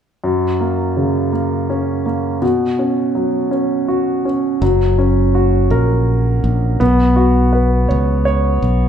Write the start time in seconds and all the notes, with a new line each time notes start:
0.24 F#2
0.60 A#3
0.97 C#3
1.32 A#3
1.70 C#4
2.06 A#3
2.42 B2
2.79 C#4
3.15 F#3
3.51 C#4
3.88 F#4
4.25 C#4
4.62 F#1 F#3
4.98 C#4
5.35 F#4
5.70 A#1 A#4
6.44 A#1
6.80 B1 B3
7.16 F#4
7.53 B4
7.89 C#2 C#5
8.25 C#5
8.62 B1